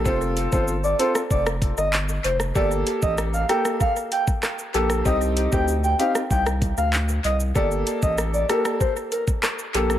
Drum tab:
HH |--x---x---x---x-|--x---x---x---x-|--x---x---x---x-|--x---x---x---x-|
SH |xxxxxxxxxxxxxxxx|xxxxxxxxxxxxxxxx|xxxxxxxxxxxxxxxx|xxxxxxxxxxxxxxxx|
CP |------------x---|------------x---|------------x---|------------x---|
SD |-------r-r-----r|----r-rr----r--r|-------r-r------|----r-rr----r--r|
BD |o--o----o-o-----|o--o----o--o----|o--o----o-o-----|o--o----o--o----|